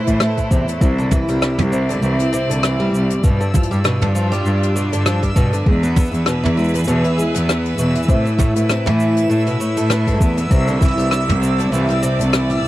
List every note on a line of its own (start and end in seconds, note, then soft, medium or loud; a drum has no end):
0.00 0.82 A3 medium
0.00 3.23 E4 medium
0.00 1.79 B4 medium
0.00 1.79 C5 medium
0.07 0.16 A2 loud
0.07 0.19 E3 medium
0.07 kick medium
0.07 closed hi-hat medium
0.07 cabasa soft
0.20 0.36 A3 medium
0.20 cross-stick loud
0.20 cabasa medium
0.37 0.50 A3 medium
0.37 kick medium
0.37 closed hi-hat medium
0.37 cabasa soft
0.51 0.61 E2 medium
0.51 0.66 C3 medium
0.51 kick loud
0.51 cabasa medium
0.68 0.80 A2 medium
0.68 closed hi-hat medium
0.68 cabasa medium
0.81 1.18 C2 loud
0.81 3.24 C3 medium
0.81 0.97 C3 medium
0.81 12.68 E6 loud
0.81 kick loud
0.81 cabasa medium
0.98 1.11 D3 medium
0.98 cabasa soft
1.09 1.27 E3 medium
1.09 3.24 C4 medium
1.09 kick loud
1.09 mid tom medium
1.09 cabasa medium
1.28 1.46 C2 medium
1.28 1.71 G3 loud
1.28 closed hi-hat medium
1.28 cabasa soft
1.42 cross-stick loud
1.42 cabasa medium
1.58 1.94 C2 loud
1.58 closed hi-hat soft
1.58 mid tom medium
1.72 1.88 C3 medium
1.72 4.22 D5 medium
1.72 cabasa medium
1.89 2.01 D3 medium
1.89 closed hi-hat medium
1.89 cabasa soft
2.02 2.13 C2 loud
2.02 2.18 E3 medium
2.02 cabasa medium
2.19 2.27 G3 medium
2.19 closed hi-hat medium
2.33 2.48 C3 loud
2.33 cabasa medium
2.49 2.85 C2 medium
2.49 2.62 D3 medium
2.49 closed hi-hat medium
2.49 cabasa soft
2.63 2.78 E3 medium
2.63 cross-stick loud
2.63 cabasa medium
2.80 3.22 G3 medium
2.93 3.13 C2 medium
2.93 cabasa medium
3.10 closed hi-hat medium
3.10 cabasa soft
3.24 3.61 G2 loud
3.24 3.39 B2 medium
3.24 5.67 G3 medium
3.24 kick loud
3.24 cabasa medium
3.41 3.53 D3 medium
3.41 cabasa medium
3.54 3.69 F3 medium
3.54 kick loud
3.54 mid tom medium
3.54 cabasa loud
3.63 closed hi-hat medium
3.70 3.88 G2 medium
3.70 3.79 G3 medium
3.70 6.64 D4 medium
3.70 11.49 B4 medium
3.70 cabasa soft
3.84 4.00 B2 medium
3.84 5.66 F4 medium
3.84 cross-stick loud
3.84 cabasa medium
4.01 4.37 G2 loud
4.01 4.14 D3 medium
4.01 closed hi-hat soft
4.01 mid tom medium
4.15 4.30 F3 medium
4.15 cabasa loud
4.32 4.74 G3 loud
4.32 closed hi-hat medium
4.32 cabasa soft
4.45 4.55 G2 loud
4.45 cabasa medium
4.63 closed hi-hat medium
4.76 4.91 B2 medium
4.76 cabasa medium
4.92 5.28 G2 medium
4.92 5.04 D3 medium
4.92 closed hi-hat medium
4.92 cabasa soft
5.06 5.21 F3 medium
5.06 cross-stick loud
5.06 cabasa medium
5.23 5.30 G3 medium
5.23 kick medium
5.23 closed hi-hat medium
5.36 5.56 G2 medium
5.36 5.51 B2 loud
5.36 kick loud
5.36 cabasa medium
5.53 5.66 D3 medium
5.53 closed hi-hat medium
5.53 cabasa medium
5.66 6.03 E2 loud
5.66 8.09 E3 medium
5.66 5.82 G#3 medium
5.66 kick loud
5.83 6.26 B3 medium
5.83 cabasa medium
5.83 cabasa soft
5.91 8.09 G#4 medium
5.96 kick loud
5.96 mid tom medium
5.96 cabasa medium
5.99 12.68 E4 medium
5.99 cabasa medium
6.03 cabasa medium
6.05 cabasa soft
6.07 cabasa soft
6.11 6.30 E2 medium
6.11 closed hi-hat medium
6.11 cabasa soft
6.14 cabasa soft
6.26 6.42 B2 medium
6.26 cross-stick loud
6.26 cabasa medium
6.43 6.79 E2 loud
6.43 6.56 E3 medium
6.43 closed hi-hat soft
6.43 mid tom medium
6.57 6.72 G#3 medium
6.57 cabasa soft
6.64 cabasa soft
6.68 cabasa medium
6.74 6.82 B3 medium
6.74 closed hi-hat medium
6.74 cabasa medium
6.79 cabasa medium
6.84 6.98 E2 loud
6.84 7.03 B2 loud
6.84 cabasa medium
6.88 cabasa medium
7.04 7.17 E3 medium
7.04 closed hi-hat medium
7.18 7.33 G#3 medium
7.18 cabasa medium
7.35 7.70 E2 medium
7.35 7.77 B3 loud
7.35 closed hi-hat medium
7.35 cabasa medium
7.49 cross-stick loud
7.49 cabasa medium
7.66 closed hi-hat medium
7.78 7.98 E2 medium
7.78 7.94 B2 medium
7.78 cabasa medium
7.95 8.07 E3 medium
7.95 closed hi-hat medium
8.03 cabasa soft
8.08 8.45 A2 loud
8.08 8.24 C3 medium
8.08 10.51 A3 medium
8.08 kick loud
8.08 cabasa medium
8.25 8.33 E3 medium
8.25 cabasa medium
8.38 8.54 A2 loud
8.38 kick loud
8.38 mid tom medium
8.38 cabasa medium
8.56 8.73 A2 medium
8.56 8.69 B2 medium
8.56 closed hi-hat medium
8.56 cabasa soft
8.69 8.84 C3 medium
8.69 cross-stick medium
8.69 cabasa medium
8.86 9.22 A2 loud
8.86 9.28 E3 loud
8.86 closed hi-hat soft
8.86 mid tom medium
9.00 cabasa medium
9.17 closed hi-hat medium
9.17 cabasa soft
9.29 9.40 A2 loud
9.29 9.45 A2 medium
9.29 cabasa medium
9.47 9.59 B2 medium
9.47 closed hi-hat medium
9.60 9.76 A2 medium
9.60 cabasa medium
9.77 10.22 A2 medium
9.77 9.89 A3 medium
9.77 closed hi-hat medium
9.77 cabasa medium
9.90 10.06 B3 medium
9.90 cross-stick loud
9.90 cabasa medium
10.07 10.19 A3 medium
10.07 kick medium
10.07 closed hi-hat medium
10.20 10.41 E2 medium
10.20 10.36 B3 medium
10.20 kick loud
10.20 cabasa medium
10.37 10.50 B3 medium
10.37 closed hi-hat medium
10.37 cabasa medium
10.51 10.88 C2 loud
10.51 10.66 C3 loud
10.51 12.68 C3 medium
10.51 kick loud
10.51 cabasa medium
10.68 10.80 D3 medium
10.68 cabasa medium
10.81 10.96 E3 medium
10.81 kick loud
10.81 mid tom medium
10.81 cabasa medium
10.85 mid tom soft
10.88 mid tom soft
10.91 12.68 C4 medium
10.91 mid tom soft
10.98 11.15 C2 medium
10.98 11.40 G3 medium
10.98 closed hi-hat medium
10.98 cabasa soft
11.11 cross-stick medium
11.11 cabasa medium
11.28 11.64 C2 loud
11.28 closed hi-hat soft
11.28 mid tom medium
11.42 11.57 C3 medium
11.42 12.68 D5 medium
11.42 cabasa medium
11.58 11.71 D3 medium
11.58 closed hi-hat medium
11.58 cabasa soft
11.72 11.83 C2 loud
11.72 11.87 E3 medium
11.72 cabasa medium
11.89 11.97 G3 medium
11.89 closed hi-hat medium
12.03 12.18 C3 loud
12.03 cabasa loud
12.19 12.55 C2 medium
12.19 12.32 D3 medium
12.19 closed hi-hat medium
12.19 cabasa medium
12.33 12.48 E3 medium
12.33 cross-stick loud
12.33 cabasa medium
12.50 12.68 G3 medium
12.50 closed hi-hat medium
12.63 12.68 C2 medium
12.63 cabasa soft